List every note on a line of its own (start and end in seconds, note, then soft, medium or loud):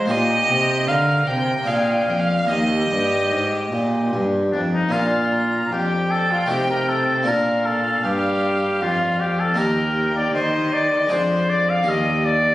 0.00 0.13 C5 medium
0.06 1.60 A#3 medium
0.06 1.61 D#4 medium
0.06 1.62 G4 medium
0.10 0.48 A#2 medium
0.10 0.45 A#2 medium
0.10 0.89 G4 medium
0.10 0.90 D#5 loud
0.49 0.84 C3 medium
0.49 0.89 C3 medium
0.87 1.23 D3 medium
0.87 1.26 D3 medium
0.87 1.67 A#4 medium
0.87 1.29 F5 loud
1.26 1.66 C3 medium
1.26 1.63 C3 medium
1.26 1.69 G5 loud
1.63 2.44 A#3 medium
1.63 2.45 D4 soft
1.63 2.46 G#4 soft
1.67 2.07 A#2 medium
1.67 2.04 A#2 medium
1.67 2.19 G#4 medium
1.67 1.76 F5 medium
1.75 1.84 G5 medium
1.83 1.93 F5 medium
1.92 2.03 G5 medium
2.01 2.11 F5 medium
2.07 2.48 F2 medium
2.07 2.45 F2 medium
2.07 2.21 G5 medium
2.20 2.50 F5 medium
2.45 2.89 D#2 medium
2.45 3.26 A#3 medium
2.45 4.88 D#4 soft
2.45 4.89 G4 soft
2.45 4.49 G4 medium
2.50 2.86 D#2 medium
2.50 4.09 D#5 loud
2.90 3.32 G2 medium
2.90 3.27 G2 medium
3.31 3.71 G#2 medium
3.31 3.68 G#2 medium
3.72 4.13 A#2 medium
3.72 4.08 A#2 medium
4.12 4.52 G2 medium
4.12 4.49 G2 medium
4.51 4.92 F2 medium
4.51 4.89 F2 medium
4.51 4.61 D4 medium
4.73 4.93 D#4 medium
4.89 5.68 A#2 medium
4.89 6.44 A#3 soft
4.89 6.45 D4 soft
4.89 5.71 F4 medium
4.89 6.46 F4 soft
4.93 5.68 A#2 soft
4.93 5.34 F5 medium
5.32 5.74 A#5 medium
5.72 6.48 F2 soft
5.72 6.46 F2 soft
5.72 6.12 G4 medium
5.72 7.29 G5 medium
6.11 6.33 A4 medium
6.31 6.51 F4 medium
6.46 7.28 C3 soft
6.46 7.23 C3 soft
6.46 7.23 A3 soft
6.46 7.24 D#4 soft
6.46 6.69 G4 medium
6.70 6.90 A#4 medium
6.89 7.29 A4 medium
7.23 8.04 A#2 medium
7.23 9.52 A#3 soft
7.23 9.52 D4 soft
7.23 9.53 F4 soft
7.27 8.00 A#2 soft
7.27 7.67 A#4 medium
7.27 9.57 F5 medium
7.66 8.04 A4 medium
8.04 8.77 G2 soft
8.04 8.83 G2 soft
8.04 8.84 G4 medium
8.81 9.57 F2 medium
8.81 9.54 F2 soft
8.81 9.21 F4 medium
9.20 9.42 G4 medium
9.40 9.59 A4 medium
9.54 10.33 D#2 medium
9.54 11.05 A#3 soft
9.54 11.06 D#4 soft
9.54 11.06 G4 soft
9.54 10.15 A#4 medium
9.54 10.37 G5 medium
9.59 10.31 D#2 soft
10.16 10.34 D5 medium
10.34 11.09 D#3 medium
10.34 11.07 D#3 soft
10.34 10.74 C5 medium
10.34 11.13 D#5 medium
10.73 11.11 D5 medium
11.07 11.82 G#3 soft
11.07 11.83 D4 soft
11.07 11.84 G#4 soft
11.11 11.85 F2 medium
11.11 11.83 F2 soft
11.11 11.51 C5 medium
11.11 12.55 D5 medium
11.49 11.71 D5 medium
11.70 11.90 F5 medium
11.83 12.55 A#3 soft
11.83 12.55 G4 soft
11.87 12.55 D#2 soft
11.87 12.55 D#2 medium
11.87 12.27 D#5 medium
12.25 12.55 D5 medium